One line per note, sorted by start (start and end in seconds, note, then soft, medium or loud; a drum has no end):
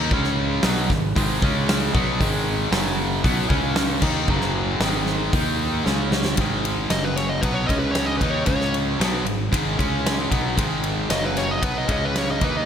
0.00 0.10 D#3 medium
0.00 0.11 A#3 loud
0.00 0.11 D#4 loud
0.11 0.60 C#2 medium
0.11 0.63 C#3 medium
0.11 0.64 G#3 loud
0.11 0.64 C#4 loud
0.11 kick loud
0.24 snare soft
0.63 0.88 B1 loud
0.63 0.89 B2 loud
0.63 0.89 F#3 loud
0.63 0.89 B3 loud
0.63 snare loud
0.63 open hi-hat medium
0.90 1.14 G#1 medium
0.90 1.11 G#2 medium
0.90 1.11 D#3 medium
0.90 kick loud
0.90 snare soft
1.15 1.40 G#1 medium
1.15 1.41 G#2 loud
1.15 1.41 D#3 medium
1.15 1.41 G#3 loud
1.15 kick loud
1.15 open hi-hat medium
1.42 1.91 C#2 medium
1.42 1.93 C#3 medium
1.42 1.94 G#3 loud
1.42 1.94 C#4 medium
1.42 kick loud
1.69 snare loud
1.69 open hi-hat medium
1.94 2.18 B1 loud
1.94 2.19 B2 loud
1.94 2.20 F#3 loud
1.94 2.20 B3 loud
1.94 kick loud
2.20 2.69 G#1 loud
2.20 2.71 G#2 medium
2.20 2.71 D#3 medium
2.20 2.72 G#3 loud
2.20 kick loud
2.20 open hi-hat medium
2.71 3.20 F#1 loud
2.71 3.23 F#2 medium
2.71 3.23 C#3 loud
2.71 3.22 F#3 loud
2.71 snare loud
2.71 open hi-hat medium
3.23 3.49 B1 medium
3.23 3.48 B2 medium
3.23 3.48 F#3 medium
3.23 3.49 B3 loud
3.23 kick loud
3.23 open hi-hat medium
3.49 3.99 C#2 medium
3.49 4.01 C#3 medium
3.49 4.01 G#3 loud
3.49 4.02 C#4 medium
3.49 kick loud
3.76 snare loud
3.76 open hi-hat medium
4.02 4.27 D#2 medium
4.02 4.28 D#3 medium
4.02 4.28 A#3 loud
4.02 4.29 D#4 medium
4.02 kick loud
4.02 crash medium
4.28 4.77 F#1 medium
4.28 4.80 F#2 medium
4.28 4.81 C#3 loud
4.28 4.81 F#3 loud
4.28 kick loud
4.41 snare soft
4.80 5.29 G#1 loud
4.80 5.33 G#2 medium
4.80 5.32 D#3 loud
4.80 5.33 G#3 loud
4.80 snare loud
4.80 open hi-hat medium
5.06 snare soft
5.33 5.82 D#2 medium
5.33 5.86 D#3 medium
5.33 5.87 A#3 medium
5.33 5.86 D#4 medium
5.33 kick loud
5.33 open hi-hat medium
5.86 6.35 C#2 medium
5.86 6.38 C#3 medium
5.86 6.38 G#3 medium
5.86 6.38 C#4 medium
5.86 snare medium
6.12 snare medium
6.25 snare medium
6.37 6.87 G#1 medium
6.37 6.91 G#2 medium
6.37 6.92 D#3 medium
6.37 6.92 G#3 medium
6.37 kick medium
6.37 ride loud
6.65 ride medium
6.90 7.39 F#1 medium
6.90 7.43 F#2 medium
6.90 7.43 C#3 loud
6.90 7.43 F#3 loud
6.90 7.04 D#5 medium
6.90 snare medium
6.90 ride medium
7.05 7.16 B4 medium
7.16 7.29 C#5 medium
7.16 snare soft
7.16 ride medium
7.29 7.42 D#5 medium
7.41 7.67 B1 medium
7.41 7.70 B2 medium
7.41 7.71 F#3 medium
7.41 7.71 B3 loud
7.41 7.54 B4 medium
7.41 kick medium
7.41 ride loud
7.54 7.66 C#5 medium
7.66 8.18 C#2 medium
7.66 8.21 C#3 medium
7.66 7.79 D#5 medium
7.66 kick loud
7.66 ride medium
7.71 8.22 G#3 medium
7.71 8.22 C#4 medium
7.79 7.92 B4 medium
7.92 8.06 C#5 medium
7.92 snare loud
7.92 ride medium
8.06 8.17 D#5 medium
8.17 8.46 D#2 medium
8.17 8.30 B4 medium
8.17 kick loud
8.17 ride medium
8.22 8.47 D#3 medium
8.22 8.47 A#3 medium
8.22 8.48 D#4 loud
8.30 8.45 C#5 medium
8.46 8.96 C#2 medium
8.46 8.99 C#3 medium
8.46 8.99 G#3 medium
8.46 9.00 C#4 loud
8.46 8.73 C#5 medium
8.46 kick loud
8.46 ride medium
8.61 snare soft
8.74 ride medium
8.99 9.25 B1 loud
8.99 9.25 B2 loud
8.99 9.25 F#3 medium
8.99 9.26 B3 medium
8.99 snare loud
8.99 ride medium
9.25 9.51 G#1 medium
9.25 9.47 G#2 medium
9.25 9.47 D#3 medium
9.25 ride medium
9.52 9.77 G#1 medium
9.52 9.78 G#2 medium
9.52 9.77 D#3 medium
9.52 9.78 G#3 medium
9.52 kick loud
9.52 ride loud
9.78 10.28 C#2 medium
9.78 10.30 C#3 medium
9.78 10.31 G#3 medium
9.78 10.31 C#4 medium
9.78 kick loud
9.78 ride medium
10.06 snare loud
10.06 ride medium
10.30 10.56 B1 medium
10.30 10.56 B2 medium
10.30 10.57 F#3 loud
10.30 10.57 B3 loud
10.30 kick loud
10.30 ride medium
10.57 11.06 G#1 medium
10.57 11.09 G#2 medium
10.57 11.09 D#3 medium
10.57 11.09 G#3 medium
10.57 kick medium
10.57 ride loud
10.84 ride medium
11.09 11.59 F#1 medium
11.09 11.61 F#2 loud
11.09 11.61 C#3 loud
11.09 11.60 F#3 loud
11.09 11.23 D#5 medium
11.09 snare loud
11.09 ride medium
11.25 11.38 B4 medium
11.37 11.51 C#5 medium
11.37 snare soft
11.37 ride medium
11.51 11.63 D#5 medium
11.61 11.87 B1 medium
11.61 11.87 B2 medium
11.61 11.87 F#3 loud
11.61 11.88 B3 loud
11.61 11.76 B4 medium
11.61 kick loud
11.61 ride loud
11.78 11.90 D#5 medium
11.88 12.37 C#2 medium
11.88 12.40 C#3 medium
11.88 12.40 G#3 medium
11.88 12.40 C#4 medium
11.88 kick loud
11.88 ride medium
11.92 12.03 D#5 medium
12.05 12.16 B4 medium
12.16 12.29 C#5 medium
12.16 snare loud
12.16 ride medium
12.31 12.43 D#5 medium
12.41 12.65 D#2 medium
12.41 12.65 D#3 medium
12.41 12.65 A#3 medium
12.41 12.65 D#4 loud
12.41 12.56 B4 medium
12.41 kick loud
12.41 ride medium
12.57 12.65 D#5 medium